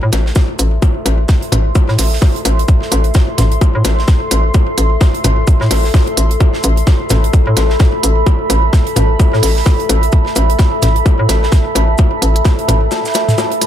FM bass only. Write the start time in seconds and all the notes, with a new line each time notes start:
0.03 A2
0.13 A1
0.59 A1
1.06 A1
1.52 A1
1.89 A2
1.99 A1
2.45 A1
2.92 A1
3.38 A1
3.75 A2
3.85 A1
4.31 A1
4.78 A1
5.24 A1
5.61 A2
5.71 A1
6.17 A1
6.64 A1
7.10 A1
7.47 A2
7.57 A1
8.03 A1
8.50 A1
8.96 A1
9.33 A2
9.43 A1
9.90 A1
10.36 A1
10.82 A1
11.19 A2
11.29 A1
11.75 A1
12.22 A1
12.68 A1